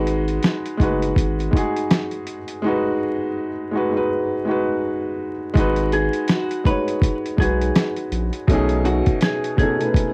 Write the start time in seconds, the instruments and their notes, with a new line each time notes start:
Already playing: sub bass G#1, felt piano G#3 D#4 F#4 B4
0.07 closed hi-hat
0.28 closed hi-hat
0.43 snare, closed hi-hat
0.66 closed hi-hat
0.78 sub bass F#1, felt piano G#3 D#4, kick, closed hi-hat
0.82 felt piano F#4 B4
1.02 closed hi-hat
1.16 sub bass G#1, kick, closed hi-hat
1.40 closed hi-hat
1.51 felt piano G#3 D#4 F#4, kick
1.57 felt piano G#4, closed hi-hat
1.76 closed hi-hat
1.91 snare, closed hi-hat
2.11 closed hi-hat
2.27 closed hi-hat
2.48 closed hi-hat
2.62 felt piano G#3 D#4
2.66 felt piano F#4 B4
3.71 felt piano G#3 D#4
3.75 felt piano F#4 B4
3.91 felt piano G#3 D#4
3.95 felt piano F#4 B4
4.45 felt piano G#3 D#4 F#4
4.51 felt piano B4
5.54 sub bass G#1, felt piano G#3 D#4 F#4, kick, closed hi-hat
5.60 felt piano B4
5.76 closed hi-hat
5.92 hollow-body jazz guitar G#4, closed hi-hat
6.13 closed hi-hat
6.28 hollow-body jazz guitar F#4, snare, closed hi-hat
6.51 closed hi-hat
6.64 felt piano G#3 D#4 F#4, hollow-body jazz guitar B4, kick, closed hi-hat
6.70 felt piano C#5
6.88 closed hi-hat
7.02 kick, closed hi-hat
7.26 closed hi-hat
7.37 sub bass B1, felt piano G#3 D#4, hollow-body jazz guitar G#4, kick
7.41 felt piano F#4 B4, closed hi-hat
7.61 closed hi-hat
7.76 snare, closed hi-hat
7.96 closed hi-hat
8.12 sub bass A#1, closed hi-hat
8.33 closed hi-hat
8.47 sub bass B1, felt piano B2 A3 C#4, kick, closed hi-hat
8.52 felt piano D#4 G#4
8.69 closed hi-hat
8.85 hollow-body jazz guitar F#4, closed hi-hat
9.06 kick, closed hi-hat
9.21 hollow-body jazz guitar G#4, snare, closed hi-hat
9.44 closed hi-hat
9.57 felt piano B2 A3 C#4, hollow-body jazz guitar G#4, kick, closed hi-hat
9.61 felt piano D#4 A4
9.79 felt piano B2 A3 C#4, closed hi-hat
9.83 felt piano D#4 B4
9.94 kick, closed hi-hat